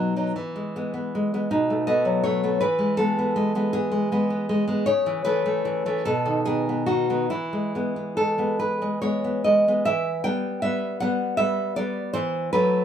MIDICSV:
0, 0, Header, 1, 2, 480
1, 0, Start_track
1, 0, Key_signature, 4, "major"
1, 0, Tempo, 780234
1, 221, Time_signature, 6, 3, 24, 8
1, 698, Tempo, 741656
1, 2138, Tempo, 767263
1, 3578, Tempo, 803213
1, 4058, Tempo, 848656
1, 5978, Tempo, 769231
1, 7842, End_track
2, 0, Start_track
2, 0, Title_t, "Nylon-string guitar"
2, 0, Program_c, 0, 24
2, 0, Note_on_c, 0, 47, 42
2, 0, Note_on_c, 0, 54, 33
2, 0, Note_on_c, 0, 59, 32
2, 0, Note_on_c, 0, 63, 37
2, 95, Note_off_c, 0, 54, 0
2, 95, Note_off_c, 0, 63, 0
2, 101, Note_on_c, 0, 54, 33
2, 105, Note_on_c, 0, 63, 33
2, 196, Note_off_c, 0, 47, 0
2, 210, Note_off_c, 0, 54, 0
2, 210, Note_off_c, 0, 63, 0
2, 219, Note_off_c, 0, 59, 0
2, 220, Note_on_c, 0, 52, 48
2, 342, Note_on_c, 0, 56, 38
2, 461, Note_off_c, 0, 56, 0
2, 467, Note_on_c, 0, 56, 38
2, 472, Note_on_c, 0, 59, 40
2, 569, Note_off_c, 0, 59, 0
2, 576, Note_on_c, 0, 59, 38
2, 699, Note_off_c, 0, 56, 0
2, 707, Note_on_c, 0, 56, 42
2, 822, Note_off_c, 0, 56, 0
2, 825, Note_off_c, 0, 59, 0
2, 830, Note_on_c, 0, 56, 38
2, 833, Note_on_c, 0, 59, 42
2, 919, Note_off_c, 0, 52, 0
2, 935, Note_off_c, 0, 56, 0
2, 937, Note_off_c, 0, 59, 0
2, 940, Note_on_c, 0, 47, 45
2, 940, Note_on_c, 0, 63, 57
2, 1065, Note_on_c, 0, 57, 39
2, 1168, Note_off_c, 0, 63, 0
2, 1170, Note_off_c, 0, 57, 0
2, 1174, Note_on_c, 0, 75, 73
2, 1177, Note_on_c, 0, 57, 41
2, 1179, Note_on_c, 0, 59, 42
2, 1291, Note_on_c, 0, 54, 40
2, 1403, Note_off_c, 0, 75, 0
2, 1409, Note_off_c, 0, 57, 0
2, 1410, Note_on_c, 0, 73, 67
2, 1417, Note_on_c, 0, 57, 41
2, 1533, Note_off_c, 0, 57, 0
2, 1535, Note_off_c, 0, 59, 0
2, 1540, Note_on_c, 0, 57, 39
2, 1544, Note_on_c, 0, 59, 43
2, 1632, Note_off_c, 0, 47, 0
2, 1642, Note_off_c, 0, 73, 0
2, 1646, Note_off_c, 0, 57, 0
2, 1647, Note_off_c, 0, 59, 0
2, 1650, Note_on_c, 0, 71, 68
2, 1651, Note_off_c, 0, 54, 0
2, 1656, Note_on_c, 0, 52, 55
2, 1767, Note_on_c, 0, 56, 42
2, 1884, Note_off_c, 0, 71, 0
2, 1887, Note_on_c, 0, 69, 70
2, 1890, Note_off_c, 0, 56, 0
2, 1897, Note_on_c, 0, 56, 39
2, 1901, Note_on_c, 0, 59, 45
2, 2018, Note_off_c, 0, 59, 0
2, 2026, Note_on_c, 0, 59, 46
2, 2129, Note_off_c, 0, 56, 0
2, 2137, Note_on_c, 0, 56, 47
2, 2250, Note_off_c, 0, 56, 0
2, 2254, Note_off_c, 0, 59, 0
2, 2258, Note_on_c, 0, 56, 42
2, 2261, Note_on_c, 0, 59, 49
2, 2348, Note_off_c, 0, 69, 0
2, 2368, Note_off_c, 0, 59, 0
2, 2370, Note_on_c, 0, 68, 71
2, 2376, Note_on_c, 0, 59, 44
2, 2478, Note_off_c, 0, 56, 0
2, 2486, Note_on_c, 0, 56, 44
2, 2605, Note_off_c, 0, 56, 0
2, 2609, Note_off_c, 0, 59, 0
2, 2612, Note_on_c, 0, 56, 44
2, 2617, Note_on_c, 0, 59, 49
2, 2721, Note_off_c, 0, 59, 0
2, 2728, Note_on_c, 0, 59, 47
2, 2839, Note_off_c, 0, 56, 0
2, 2847, Note_on_c, 0, 56, 48
2, 2954, Note_off_c, 0, 56, 0
2, 2960, Note_off_c, 0, 59, 0
2, 2961, Note_on_c, 0, 56, 41
2, 2968, Note_on_c, 0, 59, 50
2, 3065, Note_off_c, 0, 68, 0
2, 3066, Note_off_c, 0, 52, 0
2, 3074, Note_off_c, 0, 56, 0
2, 3076, Note_on_c, 0, 73, 78
2, 3077, Note_off_c, 0, 59, 0
2, 3083, Note_on_c, 0, 49, 60
2, 3203, Note_on_c, 0, 52, 45
2, 3313, Note_off_c, 0, 52, 0
2, 3315, Note_off_c, 0, 73, 0
2, 3318, Note_on_c, 0, 71, 77
2, 3321, Note_on_c, 0, 52, 40
2, 3326, Note_on_c, 0, 57, 50
2, 3442, Note_off_c, 0, 57, 0
2, 3450, Note_on_c, 0, 57, 46
2, 3564, Note_off_c, 0, 52, 0
2, 3571, Note_on_c, 0, 52, 47
2, 3689, Note_off_c, 0, 52, 0
2, 3691, Note_off_c, 0, 57, 0
2, 3696, Note_on_c, 0, 52, 41
2, 3698, Note_on_c, 0, 57, 47
2, 3787, Note_off_c, 0, 71, 0
2, 3789, Note_off_c, 0, 49, 0
2, 3802, Note_off_c, 0, 52, 0
2, 3804, Note_off_c, 0, 57, 0
2, 3813, Note_on_c, 0, 69, 69
2, 3819, Note_on_c, 0, 47, 52
2, 3933, Note_on_c, 0, 51, 43
2, 4047, Note_off_c, 0, 69, 0
2, 4049, Note_off_c, 0, 51, 0
2, 4052, Note_on_c, 0, 68, 70
2, 4057, Note_on_c, 0, 51, 38
2, 4062, Note_on_c, 0, 59, 46
2, 4178, Note_off_c, 0, 59, 0
2, 4185, Note_on_c, 0, 59, 42
2, 4282, Note_off_c, 0, 68, 0
2, 4283, Note_off_c, 0, 51, 0
2, 4284, Note_on_c, 0, 66, 61
2, 4289, Note_on_c, 0, 51, 40
2, 4409, Note_off_c, 0, 51, 0
2, 4412, Note_off_c, 0, 59, 0
2, 4416, Note_on_c, 0, 51, 37
2, 4419, Note_on_c, 0, 59, 41
2, 4517, Note_off_c, 0, 47, 0
2, 4521, Note_off_c, 0, 66, 0
2, 4525, Note_off_c, 0, 51, 0
2, 4526, Note_off_c, 0, 59, 0
2, 4530, Note_on_c, 0, 64, 55
2, 4534, Note_on_c, 0, 52, 49
2, 4659, Note_on_c, 0, 56, 35
2, 4779, Note_off_c, 0, 56, 0
2, 4785, Note_on_c, 0, 56, 34
2, 4790, Note_on_c, 0, 59, 40
2, 4898, Note_off_c, 0, 59, 0
2, 4905, Note_on_c, 0, 59, 38
2, 5019, Note_off_c, 0, 56, 0
2, 5019, Note_off_c, 0, 64, 0
2, 5021, Note_on_c, 0, 69, 62
2, 5025, Note_on_c, 0, 56, 38
2, 5134, Note_off_c, 0, 56, 0
2, 5138, Note_off_c, 0, 59, 0
2, 5141, Note_on_c, 0, 56, 36
2, 5145, Note_on_c, 0, 59, 39
2, 5251, Note_off_c, 0, 69, 0
2, 5260, Note_off_c, 0, 59, 0
2, 5263, Note_on_c, 0, 71, 51
2, 5267, Note_on_c, 0, 59, 36
2, 5382, Note_off_c, 0, 56, 0
2, 5389, Note_on_c, 0, 56, 37
2, 5495, Note_off_c, 0, 71, 0
2, 5498, Note_off_c, 0, 56, 0
2, 5501, Note_on_c, 0, 73, 64
2, 5502, Note_off_c, 0, 59, 0
2, 5505, Note_on_c, 0, 56, 36
2, 5509, Note_on_c, 0, 59, 38
2, 5623, Note_off_c, 0, 59, 0
2, 5630, Note_on_c, 0, 59, 36
2, 5735, Note_off_c, 0, 73, 0
2, 5743, Note_off_c, 0, 56, 0
2, 5743, Note_on_c, 0, 75, 61
2, 5750, Note_on_c, 0, 56, 39
2, 5869, Note_off_c, 0, 56, 0
2, 5872, Note_off_c, 0, 59, 0
2, 5876, Note_on_c, 0, 56, 34
2, 5879, Note_on_c, 0, 59, 40
2, 5953, Note_off_c, 0, 52, 0
2, 5965, Note_off_c, 0, 75, 0
2, 5972, Note_off_c, 0, 56, 0
2, 5973, Note_off_c, 0, 59, 0
2, 5975, Note_on_c, 0, 76, 77
2, 5980, Note_on_c, 0, 52, 58
2, 6209, Note_off_c, 0, 76, 0
2, 6214, Note_off_c, 0, 52, 0
2, 6215, Note_on_c, 0, 79, 79
2, 6219, Note_on_c, 0, 55, 43
2, 6224, Note_on_c, 0, 59, 46
2, 6449, Note_off_c, 0, 59, 0
2, 6450, Note_off_c, 0, 79, 0
2, 6451, Note_off_c, 0, 55, 0
2, 6453, Note_on_c, 0, 76, 78
2, 6457, Note_on_c, 0, 55, 44
2, 6458, Note_on_c, 0, 59, 50
2, 6687, Note_off_c, 0, 76, 0
2, 6692, Note_on_c, 0, 78, 77
2, 6695, Note_off_c, 0, 55, 0
2, 6695, Note_off_c, 0, 59, 0
2, 6702, Note_on_c, 0, 55, 43
2, 6702, Note_on_c, 0, 59, 50
2, 6919, Note_off_c, 0, 78, 0
2, 6921, Note_off_c, 0, 55, 0
2, 6922, Note_off_c, 0, 59, 0
2, 6922, Note_on_c, 0, 76, 81
2, 6929, Note_on_c, 0, 55, 44
2, 6930, Note_on_c, 0, 59, 50
2, 7160, Note_off_c, 0, 76, 0
2, 7162, Note_off_c, 0, 55, 0
2, 7163, Note_off_c, 0, 59, 0
2, 7165, Note_on_c, 0, 74, 75
2, 7169, Note_on_c, 0, 55, 43
2, 7173, Note_on_c, 0, 59, 48
2, 7390, Note_off_c, 0, 55, 0
2, 7391, Note_off_c, 0, 59, 0
2, 7395, Note_off_c, 0, 74, 0
2, 7398, Note_on_c, 0, 72, 78
2, 7404, Note_on_c, 0, 52, 62
2, 7638, Note_off_c, 0, 72, 0
2, 7642, Note_on_c, 0, 71, 77
2, 7643, Note_off_c, 0, 52, 0
2, 7649, Note_on_c, 0, 54, 45
2, 7650, Note_on_c, 0, 57, 54
2, 7842, Note_off_c, 0, 54, 0
2, 7842, Note_off_c, 0, 57, 0
2, 7842, Note_off_c, 0, 71, 0
2, 7842, End_track
0, 0, End_of_file